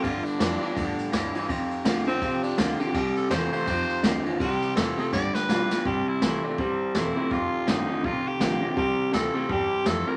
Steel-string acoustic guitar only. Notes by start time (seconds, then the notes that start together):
0.04 G3
0.40 G3 B3 F4
0.62 B3 F4
0.76 A2
1.13 G2
1.49 F2
1.85 D#3 A3 C4 F4
2.07 C4 F4
2.22 C3
2.58 D#3 A3 C4 F4
2.80 C4 F4
2.94 C3
3.30 E3 A#3 C4 E4
3.52 C4 E4
3.68 F2
4.03 D#3 A3 C4 F4
4.25 C4 F4
4.40 C3
4.76 E3 A#3 C4 E4
4.98 C4 E4
5.12 G3
5.48 G3 B3 F4
5.70 B3 F4
5.85 C3
6.21 E3 A#3 C4 E4
6.43 C4 E4
6.58 G2
6.95 E3 A#3 C4 E4
7.16 C4 E4
7.31 F2
7.67 D#3 A3 C4 F4
8.04 C3
8.39 D#3 A3 C4 F4
8.62 C4 F4
8.77 C3
9.13 E3 A#3 C4 E4
9.34 C4 E4
9.49 G2
9.85 E3 A#3 C4 E4
10.07 C4 E4